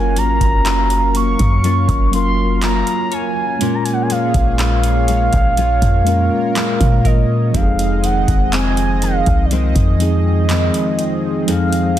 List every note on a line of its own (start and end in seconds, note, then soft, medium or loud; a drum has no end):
0.00 0.18 F#1 loud
0.00 1.23 F#3 medium
0.00 3.57 F#3 medium
0.00 3.60 F#3 medium
0.00 0.16 A#3 medium
0.00 1.24 A#3 medium
0.00 1.24 C#4 medium
0.00 3.57 C#4 medium
0.00 1.25 F4 medium
0.00 1.25 A#4 medium
0.00 2.05 A#4 medium
0.00 3.57 A#4 medium
0.00 3.57 F5 medium
0.00 0.19 G#5 loud
0.16 0.40 G#1 medium
0.16 1.14 A#3 medium
0.16 1.16 A#5 loud
0.16 closed hi-hat medium
0.41 1.35 F#1 loud
0.41 kick medium
0.41 closed hi-hat medium
0.66 1.65 F4 medium
0.66 clap loud
0.66 closed hi-hat medium
0.90 closed hi-hat medium
1.15 1.64 A#3 medium
1.15 2.10 C#6 loud
1.15 closed hi-hat medium
1.39 1.87 F#2 loud
1.39 kick loud
1.39 closed hi-hat soft
1.64 2.62 A#3 medium
1.64 2.62 C#4 medium
1.64 2.63 F4 medium
1.64 closed hi-hat medium
1.88 2.83 F#1 loud
1.88 kick medium
1.88 closed hi-hat soft
2.11 3.30 F#3 medium
2.11 3.30 A#3 medium
2.11 3.31 C#4 medium
2.11 3.31 F4 medium
2.11 2.60 C6 loud
2.11 closed hi-hat medium
2.16 3.32 A#4 medium
2.62 4.10 A#3 medium
2.62 5.58 C#4 medium
2.62 4.59 F4 medium
2.62 3.15 A#5 loud
2.62 clap loud
2.62 closed hi-hat medium
2.87 closed hi-hat medium
3.12 4.06 C#5 medium
3.12 3.76 G#5 loud
3.12 closed hi-hat soft
3.59 7.54 A#2 medium
3.59 5.17 G#3 medium
3.59 5.17 A#3 medium
3.59 7.50 A#3 medium
3.59 5.18 C#4 medium
3.59 7.50 F4 medium
3.59 5.18 F4 medium
3.59 5.56 G#4 medium
3.59 7.50 C#5 loud
3.59 closed hi-hat medium
3.63 5.19 A#4 medium
3.75 3.85 A#5 medium
3.84 3.95 G#5 medium
3.84 closed hi-hat medium
3.93 4.04 F#5 medium
4.02 4.13 G#5 medium
4.10 5.08 G#3 medium
4.10 7.08 F5 loud
4.10 closed hi-hat medium
4.34 5.29 A#1 loud
4.34 kick medium
4.34 closed hi-hat medium
4.59 5.58 F4 medium
4.59 clap loud
4.59 closed hi-hat medium
4.84 closed hi-hat medium
5.08 5.57 G#3 medium
5.08 closed hi-hat medium
5.33 5.80 A#1 loud
5.33 kick loud
5.33 closed hi-hat soft
5.57 6.55 G#3 medium
5.57 6.55 C#4 medium
5.57 6.57 F4 medium
5.57 7.52 A#4 medium
5.57 closed hi-hat medium
5.82 6.29 F2 loud
5.82 kick medium
5.82 closed hi-hat medium
6.05 7.23 G#3 medium
6.05 7.24 A#3 medium
6.05 7.24 C#4 medium
6.05 7.25 F4 medium
6.05 closed hi-hat medium
6.09 7.25 A#4 loud
6.56 9.51 G#3 medium
6.56 7.64 C#4 medium
6.56 8.06 F4 medium
6.56 clap loud
6.56 closed hi-hat medium
6.80 7.51 A#2 loud
6.80 kick loud
6.80 closed hi-hat medium
7.05 7.99 A#4 medium
7.05 7.57 D#5 loud
7.05 kick loud
7.05 closed hi-hat medium
7.52 8.25 F1 loud
7.52 11.47 F2 medium
7.52 9.10 F3 medium
7.52 11.99 F3 medium
7.52 9.11 G#3 medium
7.52 11.99 C4 medium
7.52 9.11 C4 medium
7.52 9.12 D#4 medium
7.52 11.99 G#4 medium
7.52 11.44 D#5 medium
7.52 8.06 F5 loud
7.52 kick loud
7.52 closed hi-hat medium
7.57 7.62 G4 medium
7.63 9.16 G#4 medium
7.79 closed hi-hat medium
8.03 9.02 D#3 medium
8.03 8.53 F#5 loud
8.03 closed hi-hat medium
8.28 9.22 F1 loud
8.28 kick loud
8.28 closed hi-hat medium
8.53 9.52 C4 medium
8.53 9.05 G#5 loud
8.53 clap loud
8.53 closed hi-hat medium
8.77 closed hi-hat medium
9.02 9.51 D#3 medium
9.02 9.47 F5 loud
9.02 closed hi-hat medium
9.26 9.74 C2 loud
9.26 kick loud
9.26 closed hi-hat soft
9.45 9.54 D5 medium
9.51 10.49 D#3 medium
9.51 10.50 G#3 medium
9.51 10.50 C4 medium
9.51 11.48 D#5 loud
9.51 closed hi-hat medium
9.75 10.70 F2 loud
9.75 kick medium
9.75 closed hi-hat soft
9.98 11.17 F3 medium
9.98 11.17 G#3 medium
9.98 11.18 C4 medium
9.98 11.18 D#4 medium
9.98 closed hi-hat medium
10.02 11.19 G#4 medium
10.50 11.97 D#3 medium
10.50 11.99 G#3 medium
10.50 11.99 C4 medium
10.50 clap loud
10.50 closed hi-hat medium
10.74 closed hi-hat medium
10.99 closed hi-hat soft
11.45 11.99 F2 medium
11.45 11.99 F3 medium
11.45 11.99 G#3 medium
11.45 11.99 C4 medium
11.45 11.99 D#4 medium
11.45 11.99 D#5 loud
11.45 11.99 F5 loud
11.45 closed hi-hat medium
11.50 11.99 G#4 medium
11.73 closed hi-hat medium